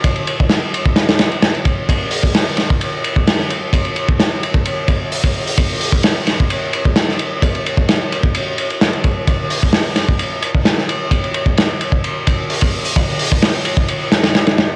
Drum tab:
RD |xxx-x-x-xxxxxxx-|x---x-x-x-x-x-x-|xxx-x-x-x-x--x--|x---x-x-x-x-x-x-|
HH |----------------|--o-------------|------------o--o|--o-------------|
SD |----o---ooo-o---|----o-o-----oo--|----o-----------|----o-o-----oo--|
BD |o--o---o------o-|o--o---o---o----|o--o---o--o--o--|o--o---o---o----|

RD |xxx-x-x-x-xxxxx-|x---x-x-x-x-x-x-|xxx-x-x-x-x--x--|x---x-x-x-xxxxx-|
HH |----------------|--o-------------|------------o--o|--o-------------|
SD |----o-------o---|----o-o-----oo--|----o-----------|----o-----ooooo-|
BD |o--o---o------o-|o--o---o---o----|o--o---o--o--o--|o--o---o--------|